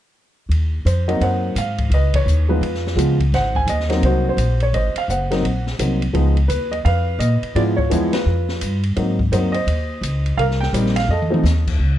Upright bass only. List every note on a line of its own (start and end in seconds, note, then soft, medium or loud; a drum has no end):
0.49 0.84 D#2 medium
0.85 1.20 F2 medium
1.21 1.55 F#2 medium
1.55 1.89 G#2 medium
1.90 2.25 C#2 medium
2.26 2.61 D#2 medium
2.61 2.95 F2 medium
2.96 3.31 C#2 medium
3.32 3.66 G#1 medium
3.67 4.01 D#2 medium
4.02 4.36 C2 medium
4.37 4.72 A#1 medium
4.73 4.94 G#1 medium
4.95 muted upright bass stroke soft
5.08 5.42 F#1 medium
5.43 5.78 A#1 medium
5.79 6.13 C2 medium
6.14 6.48 C#2 medium
6.49 6.84 D#2 medium
6.85 7.18 F2 medium
7.19 7.40 A#2 medium
7.42 muted upright bass stroke soft
7.55 7.90 G#2 medium
7.91 8.25 E2 medium
8.26 8.61 F2 medium
8.62 8.96 G2 medium
8.97 9.31 G#2 medium
9.32 9.66 F#2 medium
9.67 10.01 D#2 medium
10.01 10.37 C#2 medium
10.37 10.72 C2 medium
10.73 11.08 A#1 medium
11.08 11.43 F2 medium
11.44 11.78 D#2 medium
11.79 11.99 C#2 medium